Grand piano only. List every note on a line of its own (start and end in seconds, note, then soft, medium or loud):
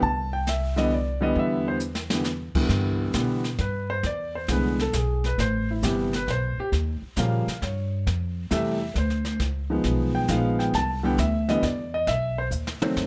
0.03 0.32 A5 loud
0.33 0.46 G5 medium
0.49 0.77 E5 medium
0.76 0.89 D3 medium
0.76 0.90 E3 medium
0.76 0.90 G3 medium
0.76 0.90 B3 medium
0.76 0.91 D#5 medium
0.94 1.22 D5 medium
1.21 1.77 D3 medium
1.21 1.77 E3 medium
1.21 1.78 G3 medium
1.21 1.78 B3 medium
1.21 1.36 D#5 medium
1.39 1.67 E5 medium
1.68 1.76 C5 medium
2.11 2.24 D3 medium
2.11 2.24 E3 medium
2.11 2.24 G3 medium
2.11 2.24 B3 medium
2.55 3.11 C2 medium
2.55 3.12 D3 medium
2.55 3.12 E3 medium
2.55 3.12 G3 medium
2.55 3.12 B3 medium
3.13 3.41 D3 medium
3.13 3.42 E3 medium
3.13 3.42 G3 medium
3.13 3.42 B3 medium
3.61 3.89 B4 medium
3.90 4.03 C5 medium
4.06 4.35 D5 medium
4.35 4.49 C5 medium
4.49 4.76 D3 medium
4.49 4.76 E3 medium
4.49 4.77 G#3 medium
4.49 4.77 B3 medium
4.49 4.80 B4 medium
4.81 4.94 A4 medium
4.96 5.24 G#4 medium
5.26 5.39 B4 medium
5.40 5.68 C5 medium
5.71 5.83 E4 medium
5.84 6.10 C3 medium
5.84 6.10 E3 medium
5.84 6.11 G3 medium
5.84 6.11 B3 medium
5.84 6.13 G4 medium
6.15 6.28 B4 medium
6.31 6.58 C5 medium
6.60 6.68 G4 medium
7.17 7.44 C#3 medium
7.17 7.44 F3 medium
7.17 7.44 G3 medium
7.17 7.45 A#3 medium
7.17 7.59 F5 medium
7.63 8.04 C#5 medium
8.51 8.78 C3 medium
8.51 8.78 E3 medium
8.51 8.78 G3 medium
8.51 8.78 A3 medium
8.51 8.93 E5 medium
8.94 8.97 B4 soft
8.98 9.38 C5 medium
9.70 10.26 D#3 medium
9.70 10.26 F3 medium
9.70 10.26 G#3 medium
9.70 10.27 B3 medium
10.15 10.28 G5 medium
10.29 10.74 D#3 medium
10.29 10.74 F3 medium
10.29 10.74 G#3 medium
10.29 10.74 B3 medium
10.29 10.59 F5 medium
10.59 10.73 G5 medium
10.75 11.03 A5 medium
11.03 11.16 D3 medium
11.03 11.16 E3 medium
11.03 11.17 G3 medium
11.03 11.17 B3 medium
11.03 11.18 G5 medium
11.20 11.48 E5 medium
11.48 11.61 D3 medium
11.48 11.62 E3 medium
11.48 11.62 G3 medium
11.48 11.62 B3 medium
11.48 11.63 D#5 medium
11.65 11.93 D5 medium
11.94 12.07 D#5 medium
12.08 12.37 E5 medium
12.38 12.47 C5 medium
12.82 13.07 D#3 medium
12.82 13.07 F#3 medium
12.82 13.07 A3 medium
12.82 13.07 C4 medium